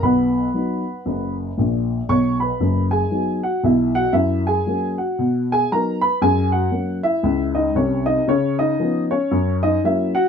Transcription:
X:1
M:4/4
L:1/8
Q:"Swing" 1/4=116
K:B
V:1 name="Upright piano"
[Bfb]6 z2 | [cc'] [Bb]2 [Gg]2 [Ff] [Ee] [Ff] | [Ee] [Gg]2 [Ff]2 [Gg] [Aa] [Bb] | [Gg] [Ff]2 [Ee]2 [Dd] [Cc] [Dd] |
[Cc] [Dd]2 [Cc]2 [Dd] [Ee] [Ff] |]
V:2 name="Upright piano" clef=bass
[B,,,B,,]2 [F,B,D]2 [F,,,F,,]2 [A,,,A,,]2 | [B,,,B,,]2 [F,,,F,,]2 [F,B,D]2 [B,,,B,,]2 | F,,2 [F,A,C]2 B,,2 [F,B,D]2 | F,,2 [F,A,C]2 C,,2 [=C,,=C,]2 |
C,2 [^E,B,C]2 F,,2 [F,A,C]2 |]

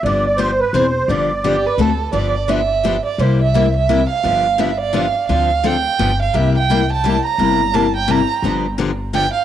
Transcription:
X:1
M:3/4
L:1/16
Q:"Swing" 1/4=171
K:Gmix
V:1 name="Violin"
z12 | z4 G2 B2 A4 | d4 e6 d2 | c2 e4 e4 f2- |
f4 e2 d2 f4 | f4 g6 f2 | e2 g4 a4 _b2- | _b4 a2 g2 b4 |
z8 g2 f2 |]
V:2 name="Accordion"
d2 d2 c2 B2 ^B4 | d8 z4 | z12 | z12 |
z12 | z12 | z12 | z12 |
z12 |]
V:3 name="Steel-string acoustic guitar"
[D,F,B,DG]2 z2 [D,F,B,DG] z3 [E,^B,D^G] z3 | [D,F,B,DG]2 z2 [D,F,B,DG] z3 [D,A,C^FA] z3 | [D,F,B,DG]2 z2 [D,F,B,DG] z3 [D,F,B,DG] z3 | [C,G,_B,EG]2 z2 [C,G,B,EG] z3 [C,G,B,EG] z3 |
[D,F,B,DG]2 z2 [D,F,B,DG] z3 [D,F,B,DG] z3 | [D,F,CDA]2 z2 [D,F,CDA] z3 [D,F,B,DG] z3 | [C,G,_B,EG]2 z2 [C,G,B,EG] z3 [C,G,B,EG] z3 | [C,G,_B,EG]2 z2 [C,G,B,EG] z3 [C,G,B,EG] z3 |
[D,F,B,DG]2 z2 [D,F,B,DG] z3 [D,F,B,DG] z3 |]
V:4 name="Upright bass" clef=bass
G,,,8 E,,,4 | G,,,8 D,,4 | G,,,12 | C,,12 |
G,,,12 | D,,8 G,,,4 | C,,12 | G,,,12 |
G,,,12 |]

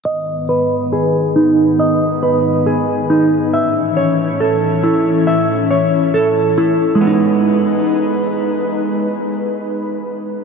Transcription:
X:1
M:4/4
L:1/8
Q:1/4=138
K:G#phr
V:1 name="Clean electric guitar"
d2 B2 G2 D2 | d2 B2 G2 D2 | e2 c2 A2 E2 | e2 c2 A2 E2 |
[G,B,D]8- | [G,B,D]8 |]
V:2 name="Analog synth pad" clef=bass
[G,,D,B,]8- | [G,,D,B,]8 | [A,,E,C]8- | [A,,E,C]8 |
[G,DB]8- | [G,DB]8 |]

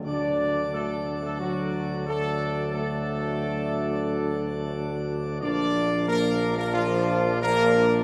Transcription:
X:1
M:4/4
L:1/16
Q:1/4=90
K:D
V:1 name="Trumpet section"
d4 A3 A F4 A4 | A12- A2 z2 | d4 _B3 B =F4 B4 |]
V:2 name="Pipe organ"
[D,F,Dd]16- | [D,F,Dd]16 | [_B,,=F,Dd]16 |]
V:3 name="Trombone section"
[F,D]16- | [F,D]16 | [=F,D]16 |]
V:4 name="French horn section"
D4 A,3 A, F,4 A,4 | A,12- A,2 z2 | D4 _B,3 B, =F,4 B,4 |]
V:5 name="Tuba" clef=bass
D,,16- | D,,16 | _B,,,16 |]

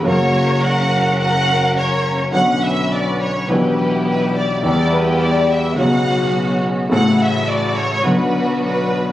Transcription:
X:1
M:4/4
L:1/16
Q:1/4=105
K:Bm
V:1 name="Violin section"
c4 f4 f4 c3 z | f2 e2 d2 c2 B4 B2 d2 | d2 B2 d2 e2 f6 z2 | f2 e2 d2 c2 B4 B4 |]
V:2 name="String section"
[CF^A]16 | [CB]8 [B,EG]8 | [B,EG]8 [B,CF]8 | [A,EF]8 [B,DF]8 |]
V:3 name="Grand piano" clef=bass
[F,,C,F,^A,F]16 | [B,,,B,,D,B,CF]8 [B,,,B,,E,B,DG]8 | [E,,E,G,B,G]8 [B,,,B,,C,F,B,F]8 | [A,,,A,,C,F,A,E]8 [B,,,B,,D,F,B,F]8 |]
V:4 name="Double bass" clef=bass
F,,,16 | B,,,8 B,,,8 | E,,8 B,,,8 | A,,,8 B,,,8 |]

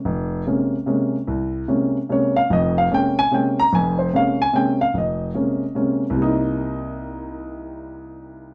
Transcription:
X:1
M:3/4
L:1/8
Q:"Swing" 1/4=148
K:Bbdor
V:1 name="Grand piano"
z6 | z4 d f | e f g a g b | a c f a g f |
e4 z2 | [C,,C,G,B,E]6- | [C,,C,G,B,E]6 |]
V:2 name="Grand piano" clef=bass
F,,,2 [C,A,B,D] z [C,A,B,D] z | C,,2 [C,A,B,D] z [C,A,B,D] z | [F,,,F,,]2 [C,A,B,D] z [C,A,B,D] z | [F,,,F,,]2 [C,A,B,D] z [C,A,B,D] z |
F,,,2 [C,A,B,D] z [C,A,B,D] z | z6 | z6 |]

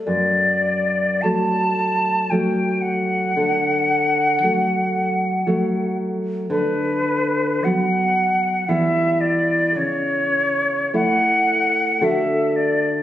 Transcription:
X:1
M:3/4
L:1/8
Q:1/4=56
K:D
V:1 name="Flute"
d2 a2 g f- | f4- f z | B2 f2 e d | c2 f2 e d |]
V:2 name="Nylon-string guitar" clef=bass
F,,2 [F,A,]2 [F,A,]2 | D,2 [F,A,]2 [F,A,]2 | D,2 [F,B,]2 [E,G,B,]2 | C,2 [A,E]2 [D,A,F]2 |]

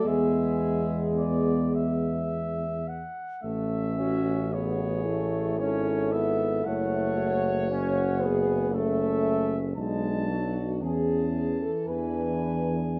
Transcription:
X:1
M:3/4
L:1/16
Q:1/4=56
K:A
V:1 name="Cornet"
e4 d2 e4 f2 | e4 c4 c2 e2 | f4 f4 e4 | a4 a4 g4 |]
V:2 name="French horn section"
G8 z4 | z2 F2 G4 A4 | c6 G2 A4 | z2 F2 G3 A B3 G |]
V:3 name="Euphonium"
B,8- B,2 z2 | C4 F2 E6 | E2 F6 C4 | D4 C4 D4 |]
V:4 name="Trombone"
G,8- G,2 z2 | A,2 C2 B,2 A,2 C2 B,2 | A,4 C2 B,2 A,4 | G,2 F,2 E,8 |]
V:5 name="Tuba" clef=bass
E,,8- E,,2 z2 | A,,,8 G,,,4 | F,,,12 | B,,,4 E,,4 E,,4 |]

